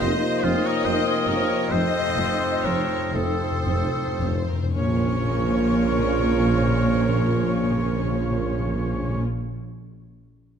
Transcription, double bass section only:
0.02 0.10 F1 medium
0.44 0.52 F1 medium
0.85 0.93 F1 medium
1.27 1.35 F1 medium
1.71 1.79 F1 medium
2.16 2.24 F1 medium
2.64 2.72 F1 medium
3.15 3.23 F1 medium
3.67 3.75 F1 medium
4.21 4.29 F1 medium
4.74 9.21 A#1 medium

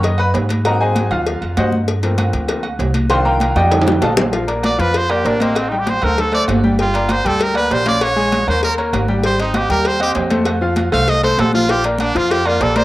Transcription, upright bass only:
0.00 0.32 F#2 loud
0.35 1.06 G#2 medium
1.11 1.39 D#2 loud
1.42 1.56 F2 medium
1.57 2.28 G2 loud
2.33 2.76 D2 loud
2.79 3.50 C2 loud
3.56 3.99 F2 loud
4.02 4.74 A#1 loud
4.79 5.22 F2 medium
5.25 5.96 A1 medium
6.02 6.45 D2 loud
6.48 7.19 G1 medium
7.25 7.68 D2 loud
7.71 8.42 A#1 medium
8.47 8.90 D#2 medium
8.93 9.64 G#1 medium
9.69 10.12 D#2 medium
10.16 10.87 F2 medium
10.92 11.35 C2 loud
11.39 12.09 A#1 loud
12.15 12.58 F2 loud
12.60 12.84 A#1 loud

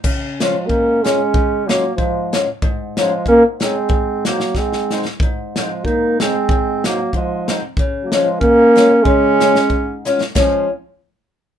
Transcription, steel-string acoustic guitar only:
0.04 0.54 C#3 medium
0.40 0.53 G#3 medium
0.40 0.54 C#4 medium
0.40 0.54 F4 medium
0.70 1.19 G#2 medium
1.04 1.18 G#3 medium
1.04 1.18 C#4 medium
1.04 1.18 F4 medium
1.34 1.83 C#3 medium
1.69 1.82 G#3 medium
1.69 1.83 C#4 medium
1.69 1.83 F4 medium
1.98 2.47 G#2 medium
2.33 2.46 G#3 medium
2.33 2.46 C#4 medium
2.33 2.46 F4 medium
2.62 3.11 G#2 medium
2.97 3.10 G#3 medium
2.97 3.10 C#4 medium
2.97 3.10 D#4 medium
3.27 3.75 G#2 medium
3.60 3.73 G#3 medium
3.60 3.73 C#4 soft
3.60 3.74 D#4 medium
3.89 4.39 G#2 medium
4.25 4.38 G#3 medium
4.25 4.39 C4 soft
4.25 4.39 D#4 medium
4.56 5.05 G#2 medium
4.92 5.04 G#3 medium
4.92 5.05 C4 medium
4.92 5.05 D#4 medium
5.22 5.71 G#2 medium
5.57 5.69 G#3 medium
5.57 5.70 C4 medium
5.57 5.70 D#4 medium
5.87 6.35 G#2 medium
6.22 6.34 G#3 medium
6.22 6.35 C4 soft
6.22 6.35 D#4 medium
6.51 6.99 G#2 medium
6.86 6.98 G#3 medium
6.86 6.98 C4 medium
6.86 6.99 D#4 medium
7.14 7.62 G#2 medium
7.49 7.62 G#3 medium
7.49 7.62 C4 soft
7.49 7.62 D#4 medium
7.79 8.27 C#3 medium
8.12 8.25 G#3 medium
8.12 8.26 C#4 medium
8.12 8.26 F4 medium
8.42 8.91 G#2 medium
8.76 8.89 G#3 medium
8.76 8.90 C#4 medium
8.76 8.90 F4 medium
9.06 9.55 C#3 medium
9.41 9.54 G#3 medium
9.41 9.54 C#4 soft
9.41 9.54 F4 medium
9.70 10.20 G#2 medium
10.05 10.19 G#3 medium
10.05 10.19 C#4 medium
10.05 10.20 F4 medium
10.35 10.68 G#3 medium
10.35 10.69 C#4 medium
10.35 10.69 F4 medium

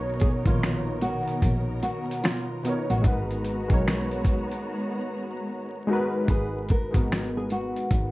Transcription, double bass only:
0.00 0.35 B1 medium
0.46 1.19 A#1 medium
1.43 1.78 A#1 medium
2.90 3.03 A1 medium
3.05 3.64 G#1 loud
3.70 4.43 B1 medium
6.29 6.88 G#1 medium
6.95 7.67 G#1 medium
7.91 8.11 G#1 medium

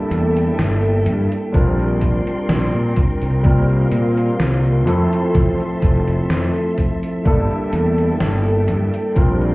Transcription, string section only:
0.00 1.52 A4 medium
0.00 1.52 E5 medium
0.00 1.53 G5 medium
1.54 4.84 A#4 medium
1.54 3.43 D5 medium
1.54 4.84 G5 medium
1.54 3.43 C6 medium
3.44 4.86 F5 medium
3.44 7.22 C6 medium
4.87 7.23 A4 medium
4.87 9.12 E5 medium
7.25 9.14 A4 medium
7.25 9.55 G5 medium
9.16 9.55 A#4 medium
9.16 9.55 D5 medium
9.16 9.55 C6 medium

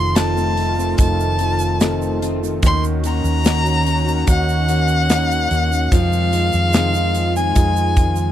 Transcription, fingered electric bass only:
0.00 0.95 F1 medium
0.99 2.59 F1 medium
2.63 3.21 D#2 loud
3.24 4.23 D#2 medium
4.28 5.47 D#2 loud
5.51 5.89 D#2 medium
5.92 6.49 F2 loud
6.54 7.52 F2 medium
7.56 8.32 F2 medium

